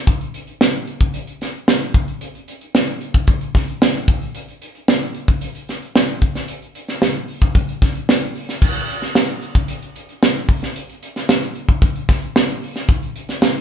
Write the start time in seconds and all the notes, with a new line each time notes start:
0.07 kick, closed hi-hat
0.21 closed hi-hat
0.34 closed hi-hat
0.47 closed hi-hat
0.61 snare
0.75 closed hi-hat
0.87 closed hi-hat
1.01 kick, closed hi-hat
1.14 closed hi-hat
1.27 closed hi-hat
1.41 snare, closed hi-hat
1.54 closed hi-hat
1.68 snare
1.81 closed hi-hat
1.94 kick, closed hi-hat
2.08 closed hi-hat
2.21 closed hi-hat
2.35 closed hi-hat
2.48 closed hi-hat
2.61 closed hi-hat
2.75 snare
2.88 closed hi-hat
3.01 closed hi-hat
3.14 kick, closed hi-hat
3.27 kick, closed hi-hat
3.41 closed hi-hat
3.55 kick, snare, closed hi-hat
3.68 closed hi-hat
3.82 snare
3.95 closed hi-hat
4.08 kick, closed hi-hat
4.22 closed hi-hat
4.35 closed hi-hat
4.48 closed hi-hat
4.62 closed hi-hat
4.75 closed hi-hat
4.88 snare
5.02 closed hi-hat
5.14 closed hi-hat
5.28 kick, closed hi-hat
5.41 closed hi-hat
5.55 closed hi-hat
5.69 snare, closed hi-hat
5.82 closed hi-hat
5.96 snare
6.09 closed hi-hat
6.22 kick, closed hi-hat
6.35 snare, closed hi-hat
6.48 closed hi-hat
6.62 closed hi-hat
6.75 closed hi-hat
6.88 snare, closed hi-hat
7.02 snare
7.16 closed hi-hat
7.28 open hi-hat
7.42 kick, closed hi-hat
7.55 kick, closed hi-hat
7.69 closed hi-hat
7.82 kick, snare, closed hi-hat
7.95 closed hi-hat
8.09 snare
8.22 closed hi-hat
8.35 open hi-hat
8.49 snare, closed hi-hat
8.62 kick, crash
8.76 closed hi-hat
8.89 closed hi-hat
9.02 snare, closed hi-hat
9.15 snare
9.29 closed hi-hat
9.42 closed hi-hat
9.55 kick, closed hi-hat
9.68 closed hi-hat
9.82 closed hi-hat
9.96 closed hi-hat
10.09 closed hi-hat
10.23 snare
10.36 closed hi-hat
10.49 kick, open hi-hat
10.63 snare, closed hi-hat
10.76 closed hi-hat
10.90 closed hi-hat
11.03 closed hi-hat
11.16 snare, closed hi-hat
11.29 snare
11.43 closed hi-hat
11.55 closed hi-hat
11.69 kick, closed hi-hat
11.82 kick, closed hi-hat
11.96 closed hi-hat
12.09 kick, snare, closed hi-hat
12.22 closed hi-hat
12.36 snare
12.49 closed hi-hat
12.62 open hi-hat
12.76 snare, closed hi-hat
12.89 kick, closed hi-hat
13.03 closed hi-hat
13.16 closed hi-hat
13.29 snare, closed hi-hat
13.42 snare
13.56 closed hi-hat